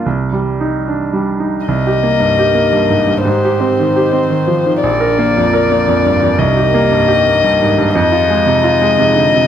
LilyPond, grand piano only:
\new Staff \with { instrumentName = "Grand piano" } { \clef bass \time 3/4 \key c \minor \tempo 4 = 114 c,8 g8 ees'8 d'8 g8 ees'8 | \tuplet 3/2 { c,8 g'8 bes8 g,8 g'8 bes8 g,8 aes,8 g,8 } | \tuplet 3/2 { aes,8 g'8 c'8 ees8 g'8 c'8 ees8 f8 ees8 } | \tuplet 3/2 { bes,,8 bes'8 bes8 f,8 bes'8 bes8 f,8 g,8 f,8 } |
\tuplet 3/2 { c,8 g'8 bes8 g,8 g'8 bes8 g,8 aes,8 g,8 } | \tuplet 3/2 { f,8 f'8 aes8 c8 f'8 aes8 c8 d8 c8 } | }